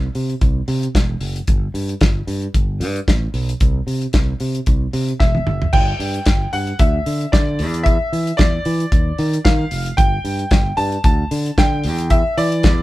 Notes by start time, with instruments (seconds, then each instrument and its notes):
0.15 fingered electric bass C3, open hi-hat
0.30 closed hi-hat
0.41 fingered electric bass C2, kick, closed hi-hat
0.68 fingered electric bass C3, open hi-hat
0.83 closed hi-hat
0.95 fingered electric bass E1, kick, snare, closed hi-hat
1.21 fingered electric bass F#1, open hi-hat
1.36 closed hi-hat
1.47 fingered electric bass G1, kick, closed hi-hat
1.74 fingered electric bass G2, open hi-hat
1.89 closed hi-hat
2.01 fingered electric bass G1, kick, snare, closed hi-hat
2.27 fingered electric bass G2, open hi-hat
2.42 closed hi-hat
2.54 fingered electric bass G1, kick, closed hi-hat
2.80 fingered electric bass G2, open hi-hat
2.96 closed hi-hat
3.08 fingered electric bass A1, kick, snare, closed hi-hat
3.34 fingered electric bass B1, open hi-hat
3.49 closed hi-hat
3.60 fingered electric bass C2, kick, closed hi-hat
3.87 fingered electric bass C3, open hi-hat
4.02 closed hi-hat
4.13 fingered electric bass C2, kick, snare, closed hi-hat
4.40 fingered electric bass C3, open hi-hat
4.55 closed hi-hat
4.66 fingered electric bass C2, kick, closed hi-hat
4.93 fingered electric bass C3, open hi-hat
5.09 closed hi-hat
5.20 fingered electric bass E1, grand piano E5, kick, snare
5.35 high tom
5.47 fingered electric bass F#1, mid tom
5.62 floor tom
5.73 fingered electric bass G1, grand piano G5, kick, crash
6.00 fingered electric bass G2, open hi-hat
6.14 closed hi-hat
6.26 fingered electric bass G1, kick, snare, closed hi-hat
6.53 fingered electric bass G2, grand piano F#5, open hi-hat
6.67 closed hi-hat
6.79 fingered electric bass D2, grand piano E5, kick, closed hi-hat
7.06 fingered electric bass D3, open hi-hat
7.21 closed hi-hat
7.32 fingered electric bass D3, grand piano D5, kick, snare, closed hi-hat
7.59 fingered electric bass E2, open hi-hat
7.74 closed hi-hat
7.83 grand piano E5, kick, closed hi-hat
8.13 fingered electric bass E3, open hi-hat
8.27 closed hi-hat
8.37 fingered electric bass E2, grand piano D5, kick, snare, closed hi-hat
8.65 fingered electric bass E3, open hi-hat
8.80 closed hi-hat
8.92 fingered electric bass D#2, kick, closed hi-hat
9.18 fingered electric bass D#3, open hi-hat
9.34 closed hi-hat
9.45 fingered electric bass D#3, grand piano F5, kick, snare, closed hi-hat
9.71 fingered electric bass F1, open hi-hat
9.86 closed hi-hat
9.97 fingered electric bass G1, grand piano G5, kick, closed hi-hat
10.25 fingered electric bass G2, open hi-hat
10.39 closed hi-hat
10.51 fingered electric bass G1, kick, snare, closed hi-hat
10.77 fingered electric bass G2, grand piano A5, open hi-hat
10.92 closed hi-hat
11.04 fingered electric bass D2, grand piano A5, kick, closed hi-hat
11.31 fingered electric bass D3, open hi-hat
11.46 closed hi-hat
11.58 fingered electric bass D3, grand piano G5, kick, snare, closed hi-hat
11.84 fingered electric bass E2, open hi-hat
11.98 closed hi-hat
12.10 grand piano E5, kick, closed hi-hat
12.37 fingered electric bass E3, grand piano D5, open hi-hat
12.52 closed hi-hat
12.63 fingered electric bass E2, kick, snare, closed hi-hat